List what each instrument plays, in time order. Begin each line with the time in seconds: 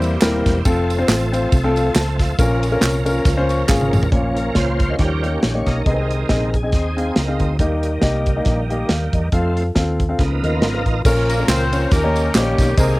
Already playing: fingered electric bass E2, tonewheel organ E3 A#3 C4 G4, grand piano G3 A#3 C4 E4 C5, horn section E4 G4
0.02 ride, tambourine
0.21 fingered electric bass D#1, grand piano G3 A#3 C4 E4 A#4, snare, clap, ride, tambourine
0.46 fingered electric bass E1, kick, snare, ride, tambourine
0.65 fingered electric bass F1, tonewheel organ F3 A3 A4, grand piano C4 F4 A4, kick, ride, tambourine
0.90 ride, tambourine
0.98 grand piano C4 F4 C5
1.08 fingered electric bass A1, snare, clap, ride, tambourine
1.32 grand piano C4 F4 C5, ride, tambourine
1.52 fingered electric bass C2, kick, ride, tambourine
1.64 grand piano C4 F4 A4
1.76 grand piano F5, ride, tambourine
1.95 fingered electric bass C#2, grand piano A5, snare, clap, ride, tambourine
2.19 grand piano F5, kick, snare, ride, tambourine
2.39 fingered electric bass A#1, grand piano A#2 C#4 F4 A#4, tonewheel organ A#3 C#4 A#4, kick, ride, tambourine
2.63 ride, tambourine
2.72 grand piano C#4 F4 A#4
2.81 fingered electric bass C2, snare, clap, ride, tambourine
3.06 grand piano C#4 F4 A#4, ride, tambourine
3.25 fingered electric bass C#2, kick, snare, ride, tambourine
3.37 grand piano C#4 F4 C5
3.49 grand piano C#6, ride, tambourine
3.68 fingered electric bass G#1, grand piano C#4 F4 G#4 F5, kick, snare, clap, tambourine
3.81 high tom
3.93 fingered electric bass A1, mid tom, tambourine
4.03 floor tom
4.12 fingered electric bass A#1, grand piano A#2 A#3 C#4 F4 C#5, tonewheel organ F3 A#3 C#4, kick, closed hi-hat
4.36 tonewheel organ A#4, closed hi-hat
4.55 fingered electric bass C#2, grand piano A#3 C#4 F4 C#5, tonewheel organ F4 C5, kick, snare, closed hi-hat
4.80 kick, closed hi-hat
4.89 grand piano A#3 C#4 F4 D#5
4.98 fingered electric bass D#2, grand piano D#3, tonewheel organ F3 G3 C#4 G4 A#4, kick, snare, closed hi-hat
5.22 grand piano A#3 D#4 G4 C#5, closed hi-hat
5.43 fingered electric bass A#1, tonewheel organ G4, snare, closed hi-hat
5.54 grand piano A#3 D#4 G4 C#5
5.66 fingered electric bass B1, tonewheel organ D#4 A#4, kick, snare, closed hi-hat
5.84 fingered electric bass C2, grand piano C3 B3 D#4 G#4 D#5, tonewheel organ D#3 G#3 C4, kick, closed hi-hat
5.91 grand piano C4
6.11 closed hi-hat
6.29 fingered electric bass A#1, grand piano C4 D#4 G#4 D#5, kick, snare, closed hi-hat
6.54 tonewheel organ G#4, kick, closed hi-hat
6.63 grand piano C4 D#4 G#4 D#5
6.72 fingered electric bass D#2, tonewheel organ C4 D#4 G#4, kick, snare, closed hi-hat
6.97 grand piano C4 D#4 G#4 F5, closed hi-hat
7.16 fingered electric bass C#2, tonewheel organ D#4 A#4, snare, closed hi-hat
7.28 grand piano C4 D#4 G#4 F5
7.40 fingered electric bass D2, kick, closed hi-hat
7.59 fingered electric bass D#2, grand piano D#3 A#3 D#4 G4 D#5, tonewheel organ D#3 G3 A#3, kick, closed hi-hat
7.83 closed hi-hat
8.02 fingered electric bass C2, grand piano A#3 D#4 G4 D#5, kick, snare, closed hi-hat
8.26 kick, closed hi-hat
8.36 grand piano A#3 D#4 G4 D#5
8.45 fingered electric bass A#1, kick, snare, closed hi-hat
8.70 grand piano A#3 D#4 G4 D#5, closed hi-hat
8.89 fingered electric bass D#2, grand piano F5, snare, closed hi-hat
9.13 fingered electric bass E2, grand piano D#5, kick, closed hi-hat
9.32 fingered electric bass F2, tonewheel organ F3 A3 C4, grand piano C4 F4 A4 F5, kick, closed hi-hat
9.57 closed hi-hat
9.75 fingered electric bass D#2, grand piano C4 F4 A4 F5, kick, snare, closed hi-hat
10.00 kick, closed hi-hat
10.09 grand piano C4 F4 A4 F5
10.19 fingered electric bass C#2, grand piano C#3, tonewheel organ F3 A#3 B3 D#4, kick, snare, closed hi-hat
10.43 fingered electric bass D#2, grand piano B3 F4 A#4 D#5, tonewheel organ D#4 F4 A#4, closed hi-hat
10.62 fingered electric bass G#1, snare, closed hi-hat
10.74 grand piano B3 F4 A#4 F5
10.86 fingered electric bass A1, kick, closed hi-hat
11.05 fingered electric bass A#1, grand piano A#2 C#4 F4 A#4, tonewheel organ F3 A#3 C#4 A#4, kick, crash, tambourine
11.29 horn section A#3 A#4, ride, tambourine
11.39 grand piano C#4 F4 A#4
11.48 fingered electric bass C#2, horn section C4 F4 C5, snare, clap, ride, tambourine
11.72 grand piano C#4 F4 C#5, ride, tambourine
11.90 fingered electric bass D#2, tonewheel organ D#3 G4, grand piano D#3, horn section A#3 C#4 G4 A#4, kick, snare, ride, tambourine
12.04 grand piano A#3 C#4 D#4 G4 C#5
12.16 ride, tambourine
12.34 fingered electric bass A#1, horn section G3 A#3 C#4 G4, grand piano A#3 C#4 D#4 G4 C5, snare, clap, ride, tambourine
12.40 grand piano C#5
12.58 fingered electric bass B1, kick, snare, ride, tambourine
12.77 fingered electric bass C2, grand piano C3 D#4 G#4 C5, tonewheel organ G#3 C4 G#4, horn section A#3 D#4 A#4, kick, ride, tambourine